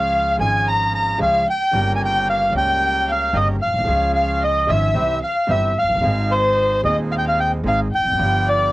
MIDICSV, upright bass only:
0, 0, Header, 1, 2, 480
1, 0, Start_track
1, 0, Tempo, 536673
1, 1559, Time_signature, 4, 2, 24, 8
1, 7802, End_track
2, 0, Start_track
2, 0, Title_t, "Upright bass"
2, 0, Program_c, 0, 32
2, 0, Note_on_c, 0, 37, 88
2, 325, Note_off_c, 0, 37, 0
2, 351, Note_on_c, 0, 32, 88
2, 1038, Note_off_c, 0, 32, 0
2, 1065, Note_on_c, 0, 37, 90
2, 1274, Note_off_c, 0, 37, 0
2, 1547, Note_on_c, 0, 31, 92
2, 2234, Note_off_c, 0, 31, 0
2, 2258, Note_on_c, 0, 37, 90
2, 2949, Note_off_c, 0, 37, 0
2, 2979, Note_on_c, 0, 31, 92
2, 3189, Note_off_c, 0, 31, 0
2, 3283, Note_on_c, 0, 34, 48
2, 3340, Note_off_c, 0, 34, 0
2, 3346, Note_on_c, 0, 35, 59
2, 3396, Note_off_c, 0, 35, 0
2, 3401, Note_on_c, 0, 36, 69
2, 3459, Note_off_c, 0, 36, 0
2, 3465, Note_on_c, 0, 37, 87
2, 4155, Note_off_c, 0, 37, 0
2, 4188, Note_on_c, 0, 32, 90
2, 4394, Note_off_c, 0, 32, 0
2, 4431, Note_on_c, 0, 36, 83
2, 4636, Note_off_c, 0, 36, 0
2, 4909, Note_on_c, 0, 31, 87
2, 5117, Note_off_c, 0, 31, 0
2, 5217, Note_on_c, 0, 29, 46
2, 5271, Note_off_c, 0, 29, 0
2, 5276, Note_on_c, 0, 30, 55
2, 5333, Note_off_c, 0, 30, 0
2, 5338, Note_on_c, 0, 31, 70
2, 5387, Note_off_c, 0, 31, 0
2, 5392, Note_on_c, 0, 32, 87
2, 6083, Note_off_c, 0, 32, 0
2, 6113, Note_on_c, 0, 39, 87
2, 6804, Note_off_c, 0, 39, 0
2, 6830, Note_on_c, 0, 32, 92
2, 7040, Note_off_c, 0, 32, 0
2, 7135, Note_on_c, 0, 28, 45
2, 7194, Note_off_c, 0, 28, 0
2, 7200, Note_on_c, 0, 29, 63
2, 7253, Note_off_c, 0, 29, 0
2, 7259, Note_on_c, 0, 30, 73
2, 7322, Note_off_c, 0, 30, 0
2, 7327, Note_on_c, 0, 31, 92
2, 7802, Note_off_c, 0, 31, 0
2, 7802, End_track
0, 0, End_of_file